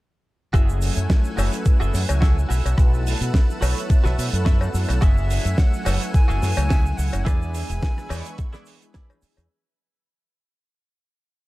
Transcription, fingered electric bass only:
0.54 F#1
0.97 F#2
1.38 F#1
1.66 muted fingered electric bass stroke
1.81 F#1
1.94 F#2
2.09 C#2
2.50 B1
2.65 B1
2.78 B1
3.21 B2
3.62 B1
4.05 B1
4.18 B2
4.33 F#2
4.74 F#2
4.89 B1
5.02 F#1
5.45 F#2
5.86 F#1
6.14 muted fingered electric bass stroke
6.29 F#1
6.42 F#2
6.57 C#2
6.98 C#2
7.13 F#1
7.27 E2
7.69 E1
8.10 E2
9.22 muted fingered electric bass stroke
9.38 E2

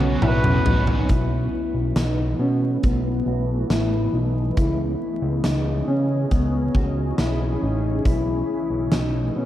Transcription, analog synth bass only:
Already playing: B1
0.22 B1
0.66 A1
1.10 B1
1.74 B1
1.96 B1
2.39 B2
2.84 B1
3.26 B1
3.70 A1
4.13 B1
4.57 C#2
5.22 C#2
5.44 C#2
5.88 C#3
6.31 C#2
6.75 C#2
7.19 B1
7.63 A1
8.05 B1
8.70 B1
8.92 B1
9.36 B2

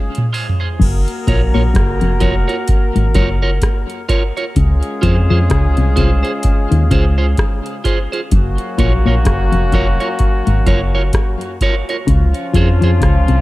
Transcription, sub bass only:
0.82 F#1
1.28 A#1
1.56 A#1
1.76 F#1
2.02 F1
2.22 F1
2.97 G#1
3.16 F#1
4.57 C#2
5.04 F2
5.31 F2
5.51 C#2
5.78 C2
5.98 C2
6.72 D#2
6.92 C#2
8.32 F#1
8.79 A#1
9.07 A#1
9.27 F#1
9.54 F1
9.74 F1
10.48 G#1
10.67 F#1
12.08 C#2
12.56 F2
12.83 F2
13.02 C#2
13.30 C2

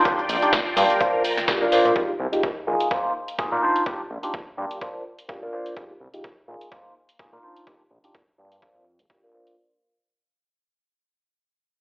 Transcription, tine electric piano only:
0.05 D4 D#4 F4 G4
0.42 D4 D#4 F4 G4
0.76 A#3 D4 F4 G4
1.00 A#3 D4 F4 C5
1.48 A#3 D4 F4 G4
1.61 A#3 D4 F4 A#4
1.72 A#3 D4 F4 C5
2.32 G#3 D#4 F4 G4
2.67 A#3 D#4 F4 G#4
2.91 A#3 D#4 F4 C5
3.38 A#3 D#4 F4 G#4
3.52 A#3 D#4 F4 A#4
3.62 D4 D#4 F4 C5
3.86 D4 D#4 F4 G4
4.23 D4 D#4 F4 G4
4.57 A#3 D4 F4 G4
4.81 A#3 D4 F4 C5
5.29 A#3 D4 F4 G4
5.42 A#3 D4 F4 A#4
5.53 A#3 D4 F4 C5
5.76 G#3 F4 G4
6.13 G#3 D#4 F4 G4
6.48 A#3 D#4 F4 G#4
6.71 A#3 D#4 F4 C5
7.19 A#3 D#4 F4 G#4
7.32 A#3 D#4 F4 A#4
7.43 D4 D#4 F4 C5
7.67 D4 D#4 G4
8.04 D4 D#4 F4 G4
8.38 A#3 D4 F4 G4
8.62 A#3 D4 F4 C5
9.10 A#3 D4 F4 G4
9.23 A#3 D4 F4 A#4
9.34 A#3 D4 F4 C5

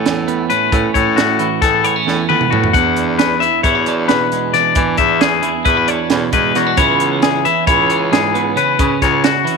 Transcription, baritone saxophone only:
Already playing: A2
0.72 A2
0.95 A2
1.62 A2
2.06 A2
2.29 A2
2.52 A2
2.74 E2
3.63 E2
4.76 E3
4.98 E2
5.66 E2
6.09 E2
6.32 E2
6.54 E2
6.78 C#2
7.67 C#2
8.79 C#3
9.01 C#2

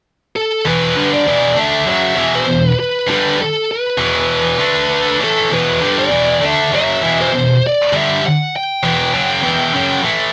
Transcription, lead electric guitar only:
0.36 A4
0.68 B4
1.14 D5
1.59 E5
1.89 E5
2.35 C5
2.80 B4
3.10 B4
3.40 A4
3.71 B4
5.24 A4
5.54 B4
5.99 D5
6.45 E5
6.75 E5
7.21 C5
7.67 D5
7.96 E5
8.27 F#5
8.56 G5

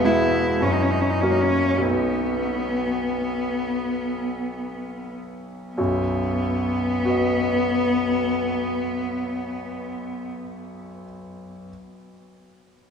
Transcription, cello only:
0.05 E4
0.62 C#4
0.72 D#4
0.82 C#4
0.91 D#4
1.00 C#4
1.10 D#4
1.21 C#4
1.31 D#4
1.41 C#4
1.85 B3
5.76 B3

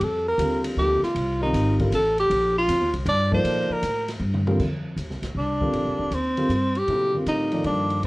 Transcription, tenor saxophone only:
0.04 A4
0.28 A#4
0.79 G4
1.04 F4
1.42 D#4
1.94 A4
2.19 G4
2.58 F4
3.09 D5
3.34 C5
3.73 A#4
5.38 D4
6.15 C4
6.78 G4
7.28 D#4
7.66 D4

